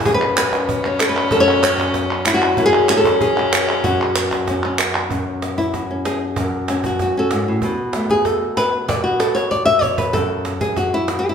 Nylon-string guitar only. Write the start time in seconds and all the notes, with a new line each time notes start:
0.06 F#2 G#4
0.14 B4
0.38 B4
0.86 C#5
1.01 A4
1.09 B4
1.32 F#2 A4
1.40 C#5
1.63 C#5
2.27 E4
2.34 F#4
2.58 F#2 E4
2.66 G#4
2.90 G#4
2.97 A4
3.21 G#4
3.39 F#4
3.84 F#2 F#4
4.49 C#4
4.65 C#4
5.12 F#2
5.58 E4
5.74 F#4
5.91 C#4
6.06 G#4
6.37 F#2
6.70 C#4
6.86 F#4
7.02 F#4
7.17 C#4 F#4 A4
7.32 G#2
7.48 A2
7.63 B2
7.96 A3
8.11 G#4
8.26 A4
8.57 B4
8.88 B2 D5
9.04 F#4
9.20 A4
9.35 C#5
9.51 D5
9.65 E5
9.82 C#5
9.98 B4
10.13 F#2 A4
10.61 G#4
10.77 F#4
10.94 E4
11.09 F#4
11.19 G#4
11.29 E4